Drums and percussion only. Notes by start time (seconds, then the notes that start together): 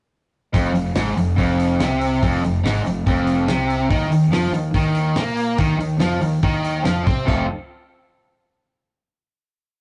0.54 kick, open hi-hat
0.75 open hi-hat
0.95 snare, open hi-hat
1.18 open hi-hat
1.38 kick, open hi-hat
1.60 open hi-hat
1.80 snare, open hi-hat
2.01 open hi-hat
2.23 kick, open hi-hat
2.44 open hi-hat
2.65 snare, open hi-hat
2.86 open hi-hat
3.07 kick, open hi-hat
3.27 open hi-hat
3.48 snare, open hi-hat
3.70 open hi-hat
3.91 kick, open hi-hat
4.12 open hi-hat
4.33 snare, open hi-hat
4.54 open hi-hat
4.74 kick, open hi-hat
4.95 open hi-hat
5.16 snare, open hi-hat
5.37 open hi-hat
5.58 kick, open hi-hat
5.80 open hi-hat
6.00 snare, open hi-hat
6.21 open hi-hat
6.43 kick, open hi-hat
6.64 open hi-hat
6.85 snare, open hi-hat
7.07 kick, open hi-hat
7.28 kick, floor tom, splash